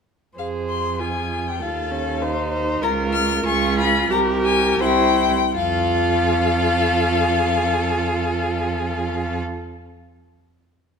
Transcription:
0.37 1.63 F2 soft
0.37 1.02 G#4 soft
0.37 1.02 C5 soft
0.37 0.46 F5 medium
0.69 1.00 C6 medium
1.00 1.61 F4 soft
1.00 1.61 G#4 soft
1.00 1.50 G#5 medium
1.48 1.63 G5 medium
1.61 2.82 D#2 soft
1.61 1.93 F4 soft
1.61 2.24 A4 soft
1.61 2.52 F5 medium
1.92 2.24 C#4 soft
2.22 2.84 D#4 medium
2.22 2.52 C5 medium
2.53 2.84 C5 medium
2.82 3.44 C#2 medium
2.82 3.44 F4 medium
2.82 3.47 A#4 medium
2.82 2.91 A#5 medium
3.13 3.45 F6 medium
3.45 4.09 C#2 medium
3.45 4.12 F4 medium
3.45 4.11 G#4 medium
3.45 3.77 C#6 medium
3.78 4.10 B5 medium
4.10 4.79 C2 medium
4.10 4.82 G4 medium
4.10 4.82 A#4 medium
4.10 4.19 A#5 medium
4.44 4.80 G#5 medium
4.80 5.31 C2 medium
4.80 5.32 E4 medium
4.80 5.32 C5 medium
4.80 5.55 G5 medium
5.56 9.38 F2 medium
5.56 9.37 F4 medium
5.56 9.38 A4 medium
5.56 9.38 F5 medium

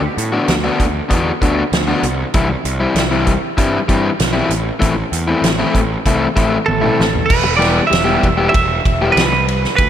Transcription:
0.01 muted overdriven electric guitar stroke soft
0.17 0.37 A2 medium
0.17 closed hi-hat medium
0.32 0.53 D3 medium
0.32 0.53 B3 medium
0.32 0.53 D4 medium
0.32 0.53 F#4 medium
0.48 0.68 D2 medium
0.48 snare loud
0.48 closed hi-hat medium
0.64 0.85 D3 medium
0.64 0.85 B3 medium
0.64 0.84 D4 medium
0.64 0.84 F#4 medium
0.80 1.00 D2 medium
0.80 kick medium
0.80 closed hi-hat medium
1.09 1.31 E2 medium
1.09 1.30 D3 medium
1.09 1.30 B3 medium
1.09 1.30 D4 medium
1.09 1.30 F#4 medium
1.09 kick medium
1.09 closed hi-hat medium
1.42 1.62 D2 medium
1.42 1.62 D3 medium
1.42 1.61 B3 medium
1.42 1.62 D4 medium
1.42 1.62 F#4 medium
1.42 kick medium
1.42 closed hi-hat medium
1.72 1.92 D2 medium
1.72 snare loud
1.72 closed hi-hat medium
1.88 2.03 D3 medium
1.88 2.03 B3 medium
1.88 2.03 D4 medium
1.88 2.03 F#4 medium
2.03 2.23 C2 medium
2.03 closed hi-hat soft
2.34 2.54 C2 medium
2.34 2.50 E3 medium
2.34 2.49 G3 medium
2.34 2.49 C4 medium
2.34 2.48 E4 medium
2.34 kick loud
2.34 closed hi-hat medium
2.49 muted overdriven electric guitar stroke soft
2.65 2.85 C2 medium
2.65 closed hi-hat medium
2.80 3.01 E3 medium
2.80 3.01 G3 medium
2.80 3.01 C4 medium
2.80 3.00 E4 medium
2.95 3.35 C2 medium
2.95 snare loud
2.95 closed hi-hat medium
3.11 3.32 E3 medium
3.11 3.32 G3 medium
3.11 3.32 C4 medium
3.11 3.31 E4 medium
3.27 kick medium
3.27 closed hi-hat medium
3.57 3.78 G2 medium
3.57 3.77 E3 medium
3.57 3.78 G3 medium
3.57 3.78 C4 medium
3.57 3.78 E4 medium
3.57 kick medium
3.57 closed hi-hat medium
3.88 4.09 G2 medium
3.88 4.08 E3 medium
3.88 4.09 G3 medium
3.88 4.09 C4 medium
3.88 4.09 E4 medium
3.88 kick medium
3.88 closed hi-hat medium
4.20 4.40 B1 medium
4.20 snare loud
4.20 closed hi-hat medium
4.33 4.50 E3 medium
4.33 4.50 G3 medium
4.33 4.50 C4 medium
4.33 4.49 E4 medium
4.50 4.70 A1 medium
4.50 closed hi-hat medium
4.79 5.02 A1 medium
4.79 4.95 E3 medium
4.79 4.95 A3 medium
4.79 4.94 C4 medium
4.79 4.94 E4 medium
4.79 kick loud
4.79 closed hi-hat medium
4.95 muted overdriven electric guitar stroke soft
5.12 5.32 E2 medium
5.12 closed hi-hat medium
5.28 5.48 E3 medium
5.28 5.48 A3 medium
5.28 5.48 C4 medium
5.28 5.48 E4 medium
5.42 5.62 A1 medium
5.42 snare loud
5.42 closed hi-hat medium
5.59 5.79 E3 medium
5.59 5.79 A3 medium
5.59 5.79 C4 medium
5.59 5.79 E4 medium
5.75 5.94 A1 medium
5.75 kick medium
5.75 closed hi-hat medium
6.06 6.26 C2 medium
6.06 6.26 E3 medium
6.06 6.26 A3 medium
6.06 6.26 C4 medium
6.06 6.26 E4 medium
6.06 kick medium
6.06 closed hi-hat medium
6.36 6.56 A1 medium
6.36 6.56 E3 medium
6.36 6.56 A3 medium
6.36 6.56 C4 medium
6.36 6.57 E4 medium
6.36 kick medium
6.36 closed hi-hat medium
6.66 6.88 A1 medium
6.66 7.30 A4 medium
6.66 high tom medium
6.81 7.03 E3 medium
6.81 7.03 A3 medium
6.81 7.03 C4 medium
6.81 7.02 E4 medium
6.81 mid tom medium
7.00 7.19 A1 medium
7.00 snare medium
7.15 floor tom medium
7.26 7.56 B4 medium
7.30 7.79 E1 medium
7.30 kick loud
7.30 crash loud
7.44 muted overdriven electric guitar stroke soft
7.57 7.79 E3 medium
7.57 7.79 G3 medium
7.57 7.80 B3 medium
7.57 7.80 G4 medium
7.57 7.87 D5 medium
7.62 snare soft
7.62 ride medium
7.87 8.47 E5 medium
7.87 muted overdriven electric guitar stroke soft
7.91 8.16 E1 medium
7.91 snare loud
7.91 ride medium
8.04 8.26 E3 medium
8.04 8.26 G3 medium
8.04 8.26 B3 medium
8.04 8.26 G4 medium
8.23 8.48 E1 medium
8.23 kick medium
8.23 ride medium
8.37 8.52 E3 medium
8.37 8.52 G3 medium
8.37 8.53 B3 medium
8.37 8.53 G4 medium
8.49 9.09 E5 medium
8.53 8.79 E1 medium
8.53 muted overdriven electric guitar stroke soft
8.53 kick loud
8.53 ride medium
8.85 9.10 E1 medium
8.85 kick medium
8.85 ride medium
9.02 9.21 E3 medium
9.02 9.21 G3 medium
9.02 9.21 B3 medium
9.02 9.21 G4 medium
9.12 9.65 C2 medium
9.12 9.75 B4 medium
9.17 snare loud
9.17 ride medium
9.32 muted overdriven electric guitar stroke soft
9.48 ride medium
9.64 snare soft
9.76 9.89 D2 medium
9.76 9.89 B4 medium
9.76 kick loud
9.76 ride medium

